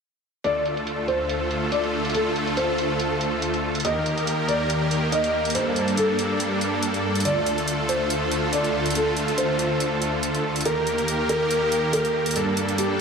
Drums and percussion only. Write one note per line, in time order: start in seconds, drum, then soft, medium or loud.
0.44 closed hi-hat medium
0.66 closed hi-hat medium
0.77 closed hi-hat soft
0.87 closed hi-hat medium
1.08 closed hi-hat medium
1.29 closed hi-hat medium
1.51 closed hi-hat medium
1.72 closed hi-hat medium
1.84 closed hi-hat soft
2.05 closed hi-hat soft
2.10 closed hi-hat medium
2.15 closed hi-hat medium
2.36 closed hi-hat medium
2.47 closed hi-hat soft
2.57 closed hi-hat medium
2.78 closed hi-hat medium
3.00 closed hi-hat medium
3.21 closed hi-hat medium
3.42 closed hi-hat medium
3.54 closed hi-hat soft
3.75 closed hi-hat soft
3.80 closed hi-hat medium
3.85 closed hi-hat medium
4.06 closed hi-hat medium
4.18 closed hi-hat soft
4.27 closed hi-hat medium
4.49 closed hi-hat medium
4.70 closed hi-hat medium
4.91 closed hi-hat medium
5.12 closed hi-hat medium
5.24 closed hi-hat soft
5.45 closed hi-hat soft
5.50 closed hi-hat medium
5.55 closed hi-hat medium
5.76 closed hi-hat medium
5.88 closed hi-hat soft
5.97 closed hi-hat medium
6.19 closed hi-hat medium
6.40 closed hi-hat medium
6.61 closed hi-hat medium
6.83 closed hi-hat medium
6.94 closed hi-hat soft
7.15 closed hi-hat soft
7.20 closed hi-hat medium
7.25 closed hi-hat medium
7.46 closed hi-hat soft
7.58 closed hi-hat soft
7.68 closed hi-hat medium
7.89 closed hi-hat medium
8.10 closed hi-hat medium
8.31 closed hi-hat soft
8.53 closed hi-hat medium
8.64 closed hi-hat soft
8.86 closed hi-hat soft
8.90 closed hi-hat medium
8.95 closed hi-hat medium
9.17 closed hi-hat soft
9.28 closed hi-hat soft
9.38 closed hi-hat medium
9.59 closed hi-hat soft
9.80 closed hi-hat medium
10.02 closed hi-hat soft
10.23 closed hi-hat medium
10.35 closed hi-hat soft
10.56 closed hi-hat soft
10.61 closed hi-hat medium
10.65 closed hi-hat medium
10.87 closed hi-hat soft
10.98 closed hi-hat soft
11.08 closed hi-hat medium
11.29 closed hi-hat medium
11.51 closed hi-hat medium
11.72 closed hi-hat medium
11.93 closed hi-hat medium
12.05 closed hi-hat soft
12.26 closed hi-hat soft
12.31 closed hi-hat medium
12.36 closed hi-hat medium
12.57 closed hi-hat medium
12.69 closed hi-hat soft
12.78 closed hi-hat medium